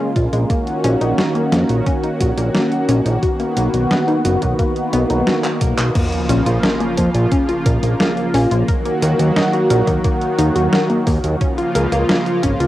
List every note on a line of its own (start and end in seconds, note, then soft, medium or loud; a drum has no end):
0.00 0.47 C#3 medium
0.00 0.47 G#3 medium
0.00 5.91 A#3 medium
0.00 0.47 F4 medium
0.16 0.28 A#1 medium
0.16 0.22 F4 medium
0.16 kick medium
0.16 closed hi-hat medium
0.33 0.45 A#1 medium
0.33 0.39 G#3 medium
0.33 closed hi-hat soft
0.50 3.20 D#3 medium
0.50 0.61 A#3 medium
0.50 3.20 C#4 medium
0.50 5.91 F#4 medium
0.50 kick loud
0.50 closed hi-hat soft
0.67 closed hi-hat soft
0.84 0.96 A#1 medium
0.84 0.95 C#4 loud
0.84 closed hi-hat medium
1.01 1.13 A#1 medium
1.01 1.12 D#4 medium
1.01 closed hi-hat soft
1.18 1.25 F#4 medium
1.18 snare loud
1.18 closed hi-hat soft
1.35 1.42 A#3 medium
1.35 closed hi-hat soft
1.52 1.64 F2 medium
1.52 1.63 A#3 medium
1.52 snare medium
1.52 closed hi-hat medium
1.69 1.82 A#1 medium
1.69 closed hi-hat soft
1.86 1.97 C#4 loud
1.86 kick loud
1.86 closed hi-hat medium
2.03 2.14 D#4 medium
2.03 closed hi-hat soft
2.20 2.33 A#1 loud
2.20 2.27 F#4 medium
2.20 kick loud
2.20 closed hi-hat medium
2.37 2.50 A#1 medium
2.37 2.44 A#3 medium
2.37 closed hi-hat soft
2.54 2.65 A#3 medium
2.54 snare loud
2.54 closed hi-hat soft
2.72 closed hi-hat soft
2.89 3.01 A#1 medium
2.89 2.99 C#4 loud
2.89 closed hi-hat medium
3.06 3.18 A#1 medium
3.06 3.16 D#4 medium
3.06 closed hi-hat soft
3.23 5.93 D#3 medium
3.23 5.93 B3 medium
3.23 3.29 F#4 medium
3.23 kick loud
3.23 closed hi-hat medium
3.40 3.46 A#3 medium
3.40 closed hi-hat soft
3.57 3.69 B1 medium
3.57 3.68 A#3 medium
3.57 closed hi-hat medium
3.74 3.86 B1 medium
3.74 closed hi-hat medium
3.91 4.02 B3 loud
3.91 snare loud
3.91 closed hi-hat medium
4.08 4.19 D#4 medium
4.08 closed hi-hat soft
4.25 4.37 F#1 medium
4.25 4.31 F#4 medium
4.25 closed hi-hat medium
4.42 4.54 B1 medium
4.42 4.48 A#3 medium
4.42 kick medium
4.42 closed hi-hat soft
4.59 4.70 A#3 medium
4.59 kick loud
4.59 closed hi-hat medium
4.59 swell medium
4.76 closed hi-hat soft
4.93 5.05 B1 medium
4.93 5.04 B3 loud
4.93 closed hi-hat medium
5.10 5.22 B1 medium
5.10 5.21 D#4 medium
5.10 closed hi-hat medium
5.27 5.34 F#4 medium
5.27 snare loud
5.27 closed hi-hat medium
5.44 5.51 A#3 medium
5.44 clap medium
5.44 closed hi-hat soft
5.61 5.74 B1 loud
5.61 5.72 A#3 medium
5.61 kick loud
5.61 closed hi-hat medium
5.78 5.91 B1 medium
5.78 clap loud
5.78 closed hi-hat soft
5.95 8.65 C#3 medium
5.95 8.65 F3 medium
5.95 6.06 A#3 medium
5.95 11.37 A#3 medium
5.95 8.65 F4 medium
5.95 kick loud
5.95 closed hi-hat medium
5.95 crash loud
5.95 sub drop medium
6.12 closed hi-hat soft
6.29 6.42 A#1 loud
6.29 6.40 C#4 loud
6.29 closed hi-hat medium
6.47 6.59 A#1 medium
6.47 6.57 F4 medium
6.47 closed hi-hat medium
6.64 6.70 A#4 medium
6.64 snare loud
6.64 closed hi-hat medium
6.81 6.87 A#3 medium
6.81 closed hi-hat soft
6.98 7.10 F2 medium
6.98 7.08 A#3 medium
6.98 kick medium
6.98 closed hi-hat loud
7.15 7.27 A#1 medium
7.15 closed hi-hat medium
7.32 7.43 C#4 loud
7.32 kick loud
7.32 closed hi-hat medium
7.49 7.60 F4 medium
7.49 closed hi-hat soft
7.66 7.78 A#1 loud
7.66 7.72 A#4 medium
7.66 kick loud
7.66 closed hi-hat loud
7.83 7.95 A#1 medium
7.83 7.89 A#3 medium
7.83 closed hi-hat medium
8.00 8.11 A#3 medium
8.00 snare loud
8.00 closed hi-hat medium
8.17 closed hi-hat soft
8.34 8.46 A#1 loud
8.34 8.45 C#4 loud
8.34 open hi-hat medium
8.51 8.63 A#1 medium
8.51 8.62 F4 medium
8.51 closed hi-hat medium
8.68 11.38 D#3 medium
8.68 11.38 F#3 medium
8.68 11.38 F#4 medium
8.68 8.75 A#4 medium
8.68 kick loud
8.68 closed hi-hat medium
8.85 8.92 A#3 medium
8.85 closed hi-hat soft
9.02 9.14 D#2 medium
9.02 9.13 A#3 medium
9.02 closed hi-hat loud
9.19 9.32 D#2 medium
9.19 closed hi-hat medium
9.36 9.47 D#4 loud
9.36 snare loud
9.36 closed hi-hat medium
9.53 9.64 F#4 medium
9.53 closed hi-hat soft
9.70 9.83 A#1 loud
9.70 9.77 A#4 medium
9.70 closed hi-hat loud
9.87 10.00 D#2 medium
9.87 9.94 A#3 medium
9.87 kick medium
9.87 closed hi-hat medium
10.05 10.15 A#3 medium
10.05 kick loud
10.05 closed hi-hat medium
10.22 closed hi-hat soft
10.39 10.51 D#2 loud
10.39 10.49 D#4 loud
10.39 closed hi-hat loud
10.56 10.68 D#2 medium
10.56 10.66 F#4 medium
10.56 closed hi-hat medium
10.73 10.79 A#4 medium
10.73 snare loud
10.73 closed hi-hat medium
10.90 10.96 A#3 medium
10.90 closed hi-hat soft
11.07 11.19 D#2 loud
11.07 11.18 A#3 medium
11.07 kick loud
11.07 open hi-hat medium
11.24 11.36 D#2 medium
11.24 closed hi-hat medium
11.41 12.67 C#3 medium
11.41 12.67 F3 medium
11.41 12.67 A#3 medium
11.41 11.52 C#4 loud
11.41 12.67 F4 medium
11.41 kick loud
11.41 closed hi-hat medium
11.58 11.69 F4 medium
11.58 closed hi-hat soft
11.75 11.87 C#2 loud
11.75 11.81 A#4 medium
11.75 closed hi-hat loud
11.92 12.04 C#2 medium
11.92 11.98 A#3 medium
11.92 closed hi-hat medium
12.09 12.20 A#3 medium
12.09 snare loud
12.09 closed hi-hat medium
12.26 closed hi-hat soft
12.43 12.55 G#1 medium
12.43 12.54 C#4 loud
12.43 kick medium
12.43 closed hi-hat loud
12.60 12.67 C#2 medium
12.60 12.67 F4 medium
12.60 closed hi-hat medium